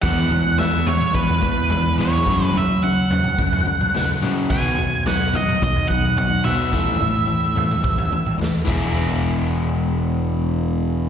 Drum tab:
CC |----------------|----------------|----------------|--------------x-|
SD |----o-----------|------------o---|----o-----------|------------o---|
T2 |-------o------o-|-o-----o---o--o-|-------o------o-|-o-----o---o----|
FT |o-o---o--o--o---|o-o---o--o--o---|o-o---o--o--o---|o-o---o--o--o---|
BD |o-------o-o-----|o-------o-------|o-------o-o-----|o-------o-----o-|

CC |----------------|
SD |----------------|
T2 |----------------|
FT |----------------|
BD |----------------|